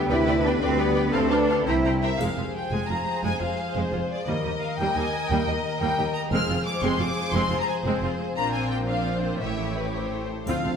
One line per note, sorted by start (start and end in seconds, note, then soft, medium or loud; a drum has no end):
0.00 0.10 B3 medium
0.00 1.16 B3 medium
0.00 0.10 G4 medium
0.00 1.16 G4 medium
0.00 0.43 B4 medium
0.00 0.12 D5 soft
0.00 0.12 E5 medium
0.10 0.56 D2 medium
0.10 0.44 C3 medium
0.10 1.13 D3 medium
0.10 0.45 E4 loud
0.10 0.17 B4 medium
0.10 1.12 B4 medium
0.10 0.17 D5 medium
0.10 0.17 G5 medium
0.27 1.69 D4 medium
0.27 0.34 B4 medium
0.27 0.34 D5 medium
0.27 0.34 G5 medium
0.43 0.61 B3 medium
0.43 0.62 D4 medium
0.43 0.96 B4 medium
0.43 0.53 B4 medium
0.43 0.52 D5 medium
0.43 0.52 G5 medium
0.59 1.07 D2 medium
0.59 0.77 A3 medium
0.59 0.79 C4 medium
0.59 0.69 B4 medium
0.59 0.69 D5 medium
0.59 0.68 G5 medium
0.59 1.15 G5 medium
0.77 1.12 G3 medium
0.77 1.14 B3 medium
0.77 0.85 B4 medium
0.77 0.85 D5 medium
0.77 1.69 D5 medium
0.77 0.85 G5 medium
0.95 1.03 B4 medium
0.95 1.16 B4 soft
0.95 1.02 D5 medium
0.95 1.02 G5 medium
1.10 1.60 D2 medium
1.10 1.69 D3 medium
1.10 1.30 A3 medium
1.10 1.31 C4 medium
1.10 1.67 A4 medium
1.10 1.20 C5 medium
1.10 1.20 F5 medium
1.10 1.20 A5 medium
1.30 1.84 C4 soft
1.30 1.67 D4 medium
1.30 1.66 B4 medium
1.30 1.38 C5 medium
1.30 1.38 F5 medium
1.30 1.37 A5 medium
1.48 1.68 F4 soft
1.48 1.68 A4 soft
1.48 1.57 C5 soft
1.48 1.57 F5 soft
1.48 1.56 A5 medium
1.65 2.14 C2 medium
1.65 2.22 C3 medium
1.65 2.20 C4 medium
1.65 2.19 E4 medium
1.65 1.75 C5 medium
1.65 1.75 G5 soft
1.65 1.75 A#5 soft
1.84 4.29 C4 soft
1.84 1.93 C5 soft
1.84 1.93 G5 soft
1.84 1.92 A#5 soft
2.02 2.22 G4 soft
2.02 2.22 A#4 soft
2.02 2.10 C5 soft
2.02 2.19 E5 medium
2.02 2.10 G5 soft
2.02 2.10 A#5 soft
2.19 2.27 F1 soft
2.19 2.27 F2 soft
2.19 3.23 F3 soft
2.19 2.35 G#3 soft
2.19 4.23 G#4 soft
2.19 4.23 C5 soft
2.19 2.55 F5 medium
2.19 triangle soft
2.37 2.44 F1 soft
2.37 2.45 F2 soft
2.37 2.44 G#3 soft
2.37 2.44 F4 soft
2.37 3.40 F4 soft
2.55 3.06 C5 soft
2.55 2.73 G5 soft
2.72 2.79 F1 soft
2.72 2.80 F2 soft
2.72 2.89 G#3 soft
2.72 2.90 G#5 medium
2.72 3.74 G#5 soft
2.88 2.97 F1 soft
2.88 2.97 F2 soft
2.88 2.97 G#3 soft
2.88 2.97 F4 soft
2.88 3.92 F5 soft
2.88 3.24 A#5 medium
3.07 3.58 C5 soft
3.23 3.31 F1 medium
3.23 3.31 F2 soft
3.23 4.28 F3 soft
3.23 3.39 G#3 soft
3.23 3.41 G#5 medium
3.40 3.49 F1 soft
3.40 3.48 F2 soft
3.40 3.47 G#3 soft
3.40 3.47 F4 soft
3.40 4.28 F4 soft
3.40 3.75 F5 medium
3.74 3.83 F1 soft
3.74 3.83 F2 medium
3.74 3.91 G#3 soft
3.74 4.10 C5 soft
3.74 4.28 G#5 soft
3.92 4.00 F1 soft
3.92 4.00 F2 soft
3.92 4.00 G#3 soft
3.92 3.99 F4 soft
3.92 4.29 F5 soft
4.10 4.28 C5 soft
4.10 4.27 D5 medium
4.27 4.34 D#2 medium
4.27 4.35 D#2 medium
4.27 5.28 D#3 soft
4.27 4.43 G3 soft
4.27 4.43 A#3 soft
4.27 6.28 A#4 soft
4.27 4.61 D#5 soft
4.27 6.32 D#5 soft
4.44 4.51 D#2 soft
4.44 4.52 D#2 soft
4.44 4.51 G3 soft
4.44 5.45 D#4 soft
4.44 4.52 G4 soft
4.61 5.12 A#4 soft
4.61 4.78 F5 soft
4.78 4.85 D#2 medium
4.78 4.86 D#2 medium
4.78 4.95 G3 soft
4.78 4.95 A#3 soft
4.78 4.95 G5 medium
4.78 6.33 A#5 soft
4.96 5.03 D#2 soft
4.96 5.03 G3 soft
4.96 5.03 G4 soft
4.96 5.97 D#5 soft
4.96 5.30 G#5 medium
5.13 5.62 A#4 soft
5.30 5.37 D#2 medium
5.30 6.33 D#3 soft
5.30 5.47 G3 medium
5.30 5.46 A#3 medium
5.30 5.47 G5 medium
5.46 5.53 D#2 soft
5.46 5.54 D#2 soft
5.46 5.55 G3 soft
5.46 6.33 D#4 soft
5.46 5.55 G4 soft
5.46 5.81 D#5 medium
5.64 6.14 A#4 soft
5.80 5.87 D#2 medium
5.80 5.97 G3 medium
5.80 5.97 A#3 medium
5.80 6.14 G5 medium
5.80 6.34 G5 soft
5.98 6.04 D#2 medium
5.98 6.05 D#2 soft
5.98 6.05 G3 soft
5.98 6.05 G4 medium
5.98 6.34 D#5 soft
6.14 6.33 A#4 soft
6.14 6.21 A#5 medium
6.31 6.39 F1 medium
6.31 6.38 F2 medium
6.31 7.33 F3 soft
6.31 6.48 G#3 medium
6.31 6.47 C4 medium
6.31 8.37 G#4 medium
6.31 8.33 C5 medium
6.31 6.66 F6 medium
6.48 6.56 F1 soft
6.48 6.55 F2 soft
6.48 6.56 C4 soft
6.48 6.56 F4 soft
6.48 7.51 F4 soft
6.66 7.16 C5 soft
6.66 6.83 D6 medium
6.82 6.90 F1 medium
6.82 6.89 F2 medium
6.82 6.99 G#3 medium
6.82 6.98 C4 medium
6.82 7.84 G#5 medium
6.82 7.01 C6 medium
6.99 7.06 F1 soft
6.99 7.06 F2 soft
6.99 7.06 C4 soft
6.99 7.06 F4 soft
6.99 8.01 F5 soft
6.99 7.34 D6 medium
7.17 7.67 C5 soft
7.33 7.40 F1 medium
7.33 7.40 F2 medium
7.33 9.43 F3 soft
7.33 7.50 G#3 medium
7.33 7.50 C4 medium
7.33 7.59 C6 medium
7.50 7.57 F1 soft
7.50 7.57 F2 soft
7.50 7.58 C4 soft
7.50 7.58 F4 soft
7.50 9.43 F4 soft
7.60 7.68 A#5 medium
7.68 8.18 C5 soft
7.68 7.75 G#5 medium
7.84 7.91 F1 medium
7.84 7.91 F2 medium
7.84 8.01 G#3 medium
7.84 8.01 C4 medium
7.84 8.38 G#5 soft
8.01 8.09 F1 soft
8.01 8.08 F2 soft
8.01 8.09 C4 soft
8.01 8.09 F4 medium
8.01 9.43 F5 soft
8.19 9.04 C5 soft
8.35 9.37 A#1 medium
8.35 9.36 A#2 soft
8.35 9.43 A#2 soft
8.35 8.84 C4 soft
8.35 8.84 D4 soft
8.35 8.85 F4 soft
8.35 8.84 C5 soft
8.35 8.52 A#5 medium
8.52 9.43 C4 soft
8.52 8.70 G#5 medium
8.70 9.22 A#4 soft
8.70 8.77 G5 medium
8.87 9.40 C4 soft
8.87 9.40 D4 soft
8.87 9.40 F4 soft
8.87 9.40 C5 soft
8.87 9.42 D5 soft
8.87 9.23 F5 medium
9.06 9.42 C5 soft
9.23 9.42 A#4 soft
9.23 9.40 C5 soft
9.41 10.30 A1 soft
9.41 10.49 A2 soft
9.41 10.30 A2 soft
9.41 10.29 A3 soft
9.41 10.30 E4 soft
9.41 10.30 G4 soft
9.41 10.30 C#5 soft
9.41 9.76 E5 soft
9.59 10.49 C#4 soft
9.76 10.28 G4 soft
9.76 9.84 B4 soft
9.94 10.46 C5 soft
9.94 10.49 E5 soft
10.12 10.49 A4 soft
10.29 10.48 G4 soft
10.46 10.53 D2 soft
10.46 10.54 D2 medium
10.46 10.77 D3 soft
10.46 10.77 F3 soft
10.46 10.64 C4 soft
10.46 10.77 C4 soft
10.46 10.63 F4 medium
10.46 10.77 F5 medium
10.46 triangle soft
10.64 10.71 D2 soft
10.64 10.72 D2 soft
10.64 10.72 C4 soft
10.64 10.71 F4 soft
10.64 10.77 A4 soft